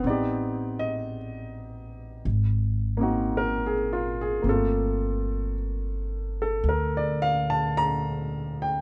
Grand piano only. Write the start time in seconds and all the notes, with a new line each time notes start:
0.00 B3 C4
0.06 D#4 G4 D5
0.79 D#5
2.97 A#3 C4 D#4
3.03 F#4
3.37 A#4
3.66 G#4
3.93 F4
4.21 G#4
4.42 A#3 C4
4.49 F4 A4
4.53 A3
6.42 A4
6.69 A#4
6.97 D5
7.22 F5
7.50 A5
7.77 A#5
8.62 G5